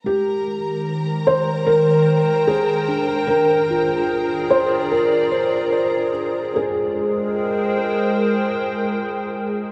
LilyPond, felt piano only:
\new Staff \with { instrumentName = "Felt piano" } { \time 4/4 \key aes \lydian \tempo 4 = 74 g'4. c''8 bes'4 aes'8. r16 | bes'4. c''8 bes'4. r8 | aes'1 | }